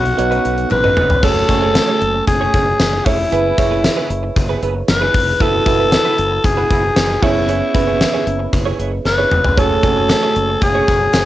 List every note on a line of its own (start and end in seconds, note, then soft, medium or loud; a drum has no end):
0.00 0.11 B1 loud
0.00 1.25 B2 medium
0.00 0.18 B3 medium
0.00 0.18 D#4 medium
0.00 0.18 F#4 medium
0.00 0.71 F#4 loud
0.00 1.25 A4 medium
0.00 0.19 C#5 medium
0.05 muted clean electric guitar stroke medium
0.05 closed hi-hat medium
0.18 0.38 B1 loud
0.18 1.16 B3 loud
0.18 1.16 D#4 medium
0.18 1.16 F#4 medium
0.18 1.17 C#5 loud
0.18 muted clean electric guitar stroke soft
0.18 closed hi-hat medium
0.31 0.43 F#3 medium
0.31 0.43 C#4 medium
0.31 0.44 D#4 medium
0.31 0.44 B4 medium
0.31 closed hi-hat medium
0.44 0.64 B1 loud
0.44 0.60 F#3 medium
0.44 0.57 C#4 medium
0.44 0.56 D#4 medium
0.44 0.56 B4 medium
0.44 closed hi-hat medium
0.57 muted clean electric guitar stroke medium
0.57 closed hi-hat medium
0.70 0.90 A1 medium
0.70 1.26 B4 loud
0.70 muted clean electric guitar stroke soft
0.70 clap medium
0.70 high tom medium
0.84 0.95 F#3 medium
0.84 0.96 C#4 medium
0.84 0.96 D#4 medium
0.84 0.97 B4 medium
0.84 mid tom medium
0.97 1.16 F1 loud
0.97 1.12 F#3 medium
0.97 1.10 C#4 medium
0.97 1.09 D#4 medium
0.97 1.09 B4 medium
0.97 mid tom medium
1.10 muted clean electric guitar stroke soft
1.10 floor tom loud
1.23 1.42 F#1 loud
1.23 1.47 A3 medium
1.23 1.47 C#4 medium
1.23 1.47 F#4 medium
1.23 1.48 G#4 medium
1.23 1.47 G#4 loud
1.23 2.27 A4 loud
1.23 1.48 C#5 medium
1.23 1.47 C#5 medium
1.23 kick loud
1.23 crash loud
1.49 1.77 F#1 loud
1.49 2.47 A3 medium
1.49 2.47 C#4 medium
1.49 2.47 F#4 medium
1.49 2.48 C#5 medium
1.49 2.47 G#5 medium
1.49 kick medium
1.49 closed hi-hat medium
1.62 1.74 A3 medium
1.62 1.74 C#4 medium
1.62 1.75 G#4 medium
1.62 1.75 C#5 medium
1.75 muted clean electric guitar stroke soft
1.75 snare loud
1.75 closed hi-hat medium
1.75 tambourine medium
1.88 2.00 A3 medium
1.88 2.00 C#4 medium
1.88 2.01 G#4 medium
1.88 2.01 C#5 medium
2.01 2.20 F#1 loud
2.01 muted clean electric guitar stroke soft
2.01 closed hi-hat medium
2.14 muted clean electric guitar stroke medium
2.27 2.46 F#1 loud
2.27 3.07 G#4 loud
2.27 muted clean electric guitar stroke soft
2.27 kick medium
2.27 closed hi-hat loud
2.41 2.52 A3 medium
2.41 2.53 C#4 medium
2.41 2.53 G#4 medium
2.41 2.53 C#5 medium
2.54 2.72 F#1 loud
2.54 2.69 A3 medium
2.54 2.66 C#4 medium
2.54 2.66 G#4 medium
2.54 2.66 C#5 medium
2.54 kick medium
2.54 closed hi-hat medium
2.67 muted clean electric guitar stroke soft
2.79 2.99 F#1 loud
2.79 snare loud
2.79 closed hi-hat medium
2.79 tambourine medium
2.93 muted clean electric guitar stroke soft
3.05 3.25 F1 loud
3.05 3.25 A3 medium
3.05 3.19 C#4 medium
3.05 4.62 E4 loud
3.05 3.18 G#4 medium
3.05 3.18 C#5 loud
3.05 kick loud
3.05 open hi-hat medium
3.19 muted clean electric guitar stroke soft
3.31 3.51 F#1 loud
3.31 3.56 B3 medium
3.31 3.56 E4 medium
3.31 3.56 G#4 medium
3.31 3.57 B4 medium
3.31 3.56 B4 medium
3.31 closed hi-hat medium
3.57 3.86 F#1 loud
3.57 4.55 E4 medium
3.57 4.56 G#4 medium
3.57 4.56 C#5 medium
3.57 muted clean electric guitar stroke soft
3.57 kick medium
3.57 closed hi-hat medium
3.71 3.82 B3 medium
3.71 3.83 E4 medium
3.71 3.83 G#4 medium
3.71 3.83 B4 medium
3.84 snare loud
3.84 closed hi-hat medium
3.84 tambourine medium
3.97 4.09 B3 medium
3.97 4.09 E4 medium
3.97 4.09 G#4 medium
3.97 4.09 B4 medium
4.10 4.29 F#1 loud
4.10 muted clean electric guitar stroke soft
4.10 closed hi-hat medium
4.23 muted clean electric guitar stroke medium
4.36 4.55 F#1 loud
4.36 muted clean electric guitar stroke soft
4.36 kick loud
4.36 closed hi-hat medium
4.49 4.61 B3 medium
4.49 4.61 E4 medium
4.49 4.61 G#4 medium
4.49 4.62 B4 medium
4.62 4.81 F#1 loud
4.62 4.77 B3 medium
4.62 4.74 E4 medium
4.62 4.74 G#4 medium
4.62 4.74 B4 medium
4.62 closed hi-hat medium
4.75 muted clean electric guitar stroke medium
4.88 5.07 F#1 loud
4.88 5.43 B4 loud
4.88 muted clean electric guitar stroke soft
4.88 snare loud
4.88 closed hi-hat loud
4.88 tambourine medium
5.01 5.13 B3 medium
5.01 5.13 E4 medium
5.01 5.14 G#4 medium
5.01 5.14 B4 medium
5.14 5.33 F1 loud
5.14 muted clean electric guitar stroke soft
5.14 kick loud
5.14 open hi-hat medium
5.27 muted clean electric guitar stroke soft
5.40 5.59 F#1 loud
5.40 5.64 B3 medium
5.40 5.65 E4 medium
5.40 5.64 E4 medium
5.40 5.65 F#4 loud
5.40 5.65 F#4 medium
5.40 6.47 A4 loud
5.40 5.65 B4 loud
5.40 5.65 B4 medium
5.40 kick loud
5.40 closed hi-hat medium
5.66 5.94 F#1 loud
5.66 6.64 E4 medium
5.66 6.65 F#4 medium
5.66 6.65 B4 medium
5.66 muted clean electric guitar stroke soft
5.66 kick medium
5.66 closed hi-hat medium
5.79 5.91 B3 medium
5.79 5.92 E4 medium
5.79 5.92 F#4 medium
5.79 5.92 B4 medium
5.92 muted clean electric guitar stroke soft
5.92 snare loud
5.92 closed hi-hat medium
5.92 tambourine medium
6.05 6.17 B3 medium
6.05 6.18 E4 medium
6.05 6.18 F#4 medium
6.05 6.18 B4 medium
6.18 6.38 F#1 loud
6.18 muted clean electric guitar stroke soft
6.18 closed hi-hat medium
6.31 muted clean electric guitar stroke medium
6.44 6.63 F#1 loud
6.44 7.25 G#4 loud
6.44 muted clean electric guitar stroke soft
6.44 kick loud
6.44 closed hi-hat loud
6.57 6.69 B3 medium
6.57 6.70 E4 medium
6.57 6.70 F#4 medium
6.57 6.70 B4 medium
6.70 6.89 F#1 loud
6.70 6.86 B3 medium
6.70 6.83 E4 medium
6.70 6.83 F#4 medium
6.70 6.82 B4 medium
6.70 kick medium
6.70 closed hi-hat medium
6.83 muted clean electric guitar stroke soft
6.96 7.16 F#1 loud
6.96 snare loud
6.96 closed hi-hat loud
6.96 tambourine medium
7.10 muted clean electric guitar stroke soft
7.22 7.60 F#1 loud
7.22 7.71 B3 medium
7.22 7.42 B3 medium
7.22 7.72 C#4 medium
7.22 7.72 E4 medium
7.22 7.35 E4 loud
7.22 8.79 E4 loud
7.22 7.35 G#4 loud
7.22 7.72 G#4 medium
7.22 7.34 C#5 loud
7.22 7.72 C#5 medium
7.22 kick loud
7.22 crash medium
7.35 muted clean electric guitar stroke soft
7.48 7.73 B3 medium
7.48 7.73 E4 medium
7.48 7.73 G#4 medium
7.48 7.73 C#5 loud
7.48 closed hi-hat medium
7.74 8.03 F#1 loud
7.74 8.73 B3 medium
7.74 8.73 C#4 medium
7.74 8.73 E4 medium
7.74 8.73 G#4 medium
7.74 8.73 B4 medium
7.74 muted clean electric guitar stroke soft
7.74 kick loud
7.74 closed hi-hat medium
7.87 7.99 B3 medium
7.87 7.99 E4 medium
7.87 8.00 G#4 medium
7.87 8.00 C#5 medium
8.00 muted clean electric guitar stroke soft
8.00 snare loud
8.00 closed hi-hat medium
8.00 tambourine medium
8.13 8.25 B3 medium
8.13 8.25 E4 medium
8.13 8.26 G#4 medium
8.13 8.26 C#5 medium
8.26 8.46 F#1 loud
8.26 muted clean electric guitar stroke soft
8.26 closed hi-hat medium
8.39 muted clean electric guitar stroke medium
8.53 8.72 F#1 loud
8.53 muted clean electric guitar stroke soft
8.53 kick medium
8.53 closed hi-hat medium
8.65 8.77 B3 medium
8.65 8.78 E4 medium
8.65 8.78 G#4 medium
8.65 8.78 C#5 medium
8.79 8.98 F#1 medium
8.79 8.94 B3 medium
8.79 8.91 E4 medium
8.79 8.91 G#4 medium
8.79 8.91 C#5 medium
8.79 closed hi-hat medium
8.92 muted clean electric guitar stroke medium
9.05 9.24 F#1 loud
9.05 9.60 B4 loud
9.05 muted clean electric guitar stroke soft
9.05 snare medium
9.18 9.30 B3 medium
9.18 9.30 E4 medium
9.18 9.31 G#4 medium
9.18 9.31 C#5 medium
9.31 9.50 F1 medium
9.31 muted clean electric guitar stroke medium
9.31 mid tom loud
9.44 muted clean electric guitar stroke soft
9.44 floor tom loud
9.57 9.76 F#1 loud
9.57 9.82 A3 medium
9.57 9.81 A3 loud
9.57 9.82 C#4 medium
9.57 9.82 F#4 medium
9.57 9.82 G#4 medium
9.57 9.82 G#4 loud
9.57 10.63 A4 loud
9.57 9.82 C#5 medium
9.57 9.82 C#5 loud
9.57 kick loud
9.57 closed hi-hat medium
9.83 10.12 F#1 loud
9.83 10.81 A3 medium
9.83 10.81 C#4 medium
9.83 10.82 F#4 medium
9.83 10.82 C#5 medium
9.83 10.82 G#5 medium
9.83 muted clean electric guitar stroke soft
9.83 kick loud
9.83 closed hi-hat medium
9.96 10.08 A3 medium
9.96 10.09 C#4 medium
9.96 10.09 G#4 medium
9.96 10.09 C#5 medium
10.09 muted clean electric guitar stroke soft
10.09 snare loud
10.09 clap medium
10.09 closed hi-hat medium
10.09 tambourine medium
10.22 10.35 A3 medium
10.22 10.35 C#4 medium
10.22 10.35 G#4 medium
10.22 10.35 C#5 medium
10.36 10.55 F#1 loud
10.36 muted clean electric guitar stroke soft
10.36 closed hi-hat medium
10.49 muted clean electric guitar stroke soft
10.62 10.81 F#1 loud
10.62 11.25 G#4 loud
10.62 muted clean electric guitar stroke soft
10.62 kick medium
10.62 closed hi-hat loud
10.75 10.86 A3 medium
10.75 10.87 C#4 medium
10.75 10.87 G#4 medium
10.75 10.87 C#5 medium
10.87 11.07 F#1 loud
10.87 11.03 A3 medium
10.87 11.00 C#4 medium
10.87 11.00 G#4 medium
10.87 10.99 C#5 medium
10.87 kick medium
10.87 closed hi-hat medium
11.01 muted clean electric guitar stroke soft
11.13 11.25 F#1 loud
11.13 snare loud
11.13 clap medium
11.13 closed hi-hat loud
11.13 tambourine medium